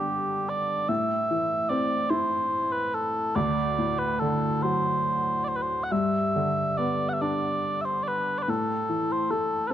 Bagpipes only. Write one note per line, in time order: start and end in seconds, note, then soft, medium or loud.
0.00 0.49 G4 medium
0.49 0.89 D5 medium
0.89 1.69 E5 medium
1.69 2.10 D5 medium
2.10 2.72 C5 medium
2.72 2.94 B4 medium
2.94 3.36 A4 medium
3.36 3.99 D5 medium
3.99 4.19 B4 medium
4.19 4.62 A4 medium
4.62 5.44 C5 medium
5.44 5.48 D5 medium
5.48 5.56 C5 medium
5.56 5.62 B4 soft
5.62 5.84 C5 medium
5.84 5.92 F#5 soft
5.92 6.77 E5 medium
6.77 7.09 D5 medium
7.09 7.13 F#5 soft
7.13 7.21 E5 soft
7.21 7.81 D5 medium
7.81 8.03 C5 medium
7.81 7.85 E5 medium
8.03 8.08 D5 medium
8.08 8.38 B4 medium
8.38 8.42 D5 soft
8.42 8.49 B4 soft
8.49 9.12 A4 medium
9.12 9.31 C5 medium
9.31 9.67 A4 medium
9.67 9.74 A4 medium
9.67 9.71 B4 medium